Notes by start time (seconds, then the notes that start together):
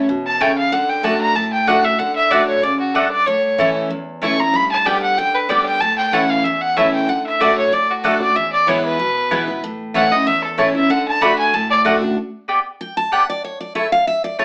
0.09 B2
0.26 A5
0.40 C#3 A3 E4 C#5 G5 A5
0.58 F5
0.72 D3 F#5
0.89 G5
1.03 D3 A3 D4 F#4 D5 F#5 A5
1.21 A#5
1.36 A2 A5
1.53 G5
1.67 D3 A3 D4 F#4 D5 F#5
1.84 D4 F#4 E5
1.99 D3 F#5
2.15 E5
2.31 D3 A3 D4 F#4 D5 F#5
2.47 C#5
2.63 C#3 D5
2.80 F#4
2.94 G2 A3 F#4 A4 D5 F#5
3.11 D5
3.26 A2 C#5
3.58 E3 A3 C#4 E4 C#5 A5
3.90 E2
4.22 E3 A3 C#4 E4 C#5 A5 C#6
4.38 C#4 E4 A#5
4.54 G2 B5
4.71 A5
4.85 D3 G3 B3 G4 D5 G5
5.02 F#5
5.17 D3 G5
5.34 B4
5.49 D3 G3 B3 G4 D5 G5
5.66 G5
5.80 A2 A5
5.98 G5
6.12 E3 A3 C#4 E4 C#5 F#5 A5
6.30 F5
6.44 E2 E5
6.61 F#5
6.76 E3 A3 C#4 E4 C#5 E5 A5
6.93 G5
7.09 D3 F#5
7.26 E5
7.40 D3 A3 D4 F#4 D5 F#5
7.58 C#5
7.72 A2 D5
7.90 F#4
8.04 D3 A3 D4 F#4 A4 D5 F#5
8.20 D4 F#4 D5
8.36 E2 E5
8.52 D5
8.67 E3 G#3 B3 E4 B4 C#5 G#5
8.84 B4
8.99 B2
9.31 E3 G#3 B3 E4 B4 G#5
9.48 B3 E4
9.64 A2
9.94 E3 A3 C#4 E4 C#5 F#5 A5
10.11 C#4 E4 D#5
10.27 E2 E5
10.44 A4
10.58 E3 A3 C#4 E4 C#5 A5
10.75 C#4 E4 E5
10.90 D3 F#5
11.08 A5
11.21 D3 A3 D4 F#4 D5 F#5 B5
11.38 G#5
11.54 A2 A5
11.70 D5
11.85 D3 A3 D4 F#4 D5 F#5
12.01 D4 F#4
12.48 B3 G4 D5 G5
12.81 G5
12.97 A5
13.12 B3 G4 D5 F#5 G5
13.30 D5
13.44 C#5
13.60 D5
13.75 A3 E4 C#5 E5 A5
13.92 F5
14.07 E5
14.24 D5
14.39 A3 E4 C#5 A5